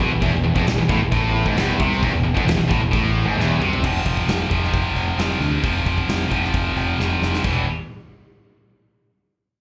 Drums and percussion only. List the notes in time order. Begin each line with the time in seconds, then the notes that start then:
0.00 kick
0.22 kick, crash
0.56 kick
0.67 snare, crash
0.89 kick
1.12 kick, crash
1.46 kick
1.57 snare, crash
1.80 kick
1.92 snare
2.03 kick, crash
2.37 kick
2.48 snare, crash
2.71 kick
2.93 kick, crash
3.40 snare
3.62 mid tom
3.73 floor tom
3.84 kick, crash
4.06 kick, open hi-hat
4.17 kick
4.28 snare, open hi-hat
4.51 kick, open hi-hat
4.64 snare
4.74 kick, open hi-hat
4.96 open hi-hat
5.19 snare, open hi-hat
5.42 open hi-hat
5.64 kick, open hi-hat
5.86 kick, open hi-hat
5.98 kick
6.09 snare, open hi-hat
6.31 kick, open hi-hat
6.44 snare
6.53 kick, open hi-hat
6.76 open hi-hat
7.00 snare
7.22 snare
7.34 snare
7.44 kick, crash